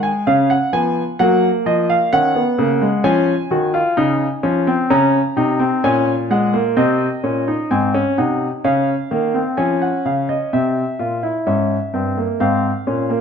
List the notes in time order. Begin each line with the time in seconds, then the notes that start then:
Already playing: G#3
0.03 G#5
0.27 C#3 C#4 F5
0.50 F#5
0.73 F3 B3 G#5
1.19 F#3 A#3 F#5
1.66 F3 D#5
1.90 F5
2.13 D#3 C#4 F#5
2.35 B3
2.58 C#3 A#3
2.82 G#3
3.04 F3 C#4 G#5
3.51 D#3 F#4
3.74 F4
3.97 C#3 D#4
4.43 F3 C#4
4.67 C4
4.90 C#3 C#4 A#5
5.36 C3 D#4
5.59 C4
5.84 A#2 C#4 G#5
6.31 G#3 F#5
6.54 A#3
6.77 C3 C4 D#5
7.23 A#2 C#4
7.48 D#4
7.71 G#2 C4 G#5
7.94 C#4
8.18 C3 D#4 F#5
8.64 C#3 C#4 F5
9.11 D#3 A#3
9.34 C4
9.57 F3 C#4 G#5
9.82 F#5
10.05 C#3 F5
10.29 D#5
10.53 C3 C4 E5
10.99 A#2 F4
11.23 E4
11.47 G#2 C#4 E5
11.94 G2 C4
12.17 A#3
12.40 G#2 C4 F5
12.87 A#2 C#4
13.10 A#3